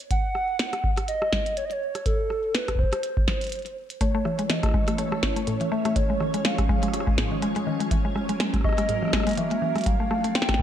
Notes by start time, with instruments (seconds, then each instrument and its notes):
0.11 soft synth lead F#5, kick, closed hi-hat
0.35 cross-stick
0.59 snare, closed hi-hat
0.73 cross-stick, closed hi-hat
0.84 kick
0.97 cross-stick, closed hi-hat
1.08 soft synth lead D#5, closed hi-hat
1.22 cross-stick
1.33 kick, snare
1.46 closed hi-hat
1.57 soft synth lead C#5, closed hi-hat
1.65 soft synth lead D#5
1.71 soft synth lead C#5, closed hi-hat
1.95 cross-stick, closed hi-hat
2.06 soft synth lead A4, kick, closed hi-hat
2.30 cross-stick
2.55 soft synth lead B4, snare, closed hi-hat
2.68 kick, cross-stick, closed hi-hat
2.75 kick
2.79 soft synth lead C5, kick
2.84 kick
2.93 cross-stick, closed hi-hat
3.03 closed hi-hat
3.17 kick
3.28 kick, snare
3.41 closed hi-hat
3.44 closed hi-hat
3.47 closed hi-hat
3.49 closed hi-hat
3.52 closed hi-hat
3.56 closed hi-hat
3.59 closed hi-hat
3.62 closed hi-hat
3.66 closed hi-hat
3.90 closed hi-hat
4.01 string machine E3 A3 C#4 A4 C#5, synth arpeggio sound A3, soft synth lead C#5, kick, closed hi-hat
4.15 synth arpeggio sound A3
4.25 synth arpeggio sound E3, cross-stick
4.39 synth arpeggio sound G#3, closed hi-hat
4.50 synth arpeggio sound E3, soft synth lead D#5, snare, closed hi-hat
4.63 synth arpeggio sound A3, kick, cross-stick, closed hi-hat
4.66 cross-stick
4.69 cross-stick
4.71 cross-stick
4.74 synth arpeggio sound G#3, kick, cross-stick
4.77 cross-stick
4.81 cross-stick
4.84 cross-stick
4.88 synth arpeggio sound A3, cross-stick, closed hi-hat
4.98 synth arpeggio sound A3, soft synth lead C#5, closed hi-hat
5.12 synth arpeggio sound A3, cross-stick
5.23 synth arpeggio sound C#4, kick, cross-stick, snare
5.36 synth arpeggio sound A3, closed hi-hat
5.47 synth arpeggio sound A2, closed hi-hat
5.61 synth arpeggio sound E3, closed hi-hat
5.72 synth arpeggio sound A3, soft synth lead E5
5.85 synth arpeggio sound A3, cross-stick, closed hi-hat
5.96 synth arpeggio sound D#3, string machine F3 G#3 G#4, soft synth lead C#5, kick, closed hi-hat
6.10 synth arpeggio sound G#3
6.20 synth arpeggio sound D#3, cross-stick
6.34 synth arpeggio sound G#3, closed hi-hat
6.45 synth arpeggio sound G#3, soft synth lead F5, snare, closed hi-hat
6.58 synth arpeggio sound G#3, kick, cross-stick, closed hi-hat
6.69 synth arpeggio sound G#3, kick
6.83 synth arpeggio sound G#3, cross-stick, closed hi-hat
6.88 cross-stick
6.94 synth arpeggio sound C#4, cross-stick, closed hi-hat
7.00 cross-stick
7.07 synth arpeggio sound G#3, kick
7.18 synth arpeggio sound G#2, kick, snare
7.32 synth arpeggio sound D#3
7.42 synth arpeggio sound G#3, closed hi-hat
7.56 synth arpeggio sound G#3, closed hi-hat
7.67 synth arpeggio sound D#3
7.80 synth arpeggio sound G#3, closed hi-hat
7.91 synth arpeggio sound E3, string machine F#3 A#3 A#4, kick, closed hi-hat
8.05 synth arpeggio sound G#3
8.15 synth arpeggio sound G#3, cross-stick
8.29 synth arpeggio sound G#3, closed hi-hat
8.40 synth arpeggio sound G#3, snare, closed hi-hat
8.54 synth arpeggio sound G#3, kick, cross-stick, closed hi-hat
8.56 cross-stick
8.61 synth arpeggio sound C#4, kick, cross-stick
8.64 soft synth lead D#5, cross-stick
8.69 cross-stick
8.73 cross-stick
8.78 synth arpeggio sound G#3, cross-stick, closed hi-hat
8.89 synth arpeggio sound G#2, closed hi-hat
9.02 synth arpeggio sound E3, cross-stick
9.05 cross-stick
9.08 cross-stick
9.10 synth arpeggio sound G#3, kick, cross-stick
9.13 cross-stick, snare
9.17 cross-stick
9.20 cross-stick
9.23 synth arpeggio sound G#3, cross-stick, closed hi-hat
9.29 closed hi-hat
9.31 closed hi-hat
9.33 closed hi-hat
9.35 closed hi-hat
9.38 synth arpeggio sound E3, soft synth lead E5, closed hi-hat
9.51 synth arpeggio sound G#3, closed hi-hat
9.62 synth arpeggio sound E3
9.76 synth arpeggio sound G#3, cross-stick, closed hi-hat
9.78 closed hi-hat
9.81 closed hi-hat
9.84 synth arpeggio sound G3, kick, closed hi-hat
9.86 string machine F3 C4 D4 A4 D5, soft synth lead F5, closed hi-hat
10.00 synth arpeggio sound A3
10.11 synth arpeggio sound A3, cross-stick
10.24 synth arpeggio sound A3, closed hi-hat
10.35 synth arpeggio sound C4, soft synth lead G5, snare, closed hi-hat
10.42 snare
10.49 synth arpeggio sound A3, kick, cross-stick, snare, closed hi-hat
10.54 snare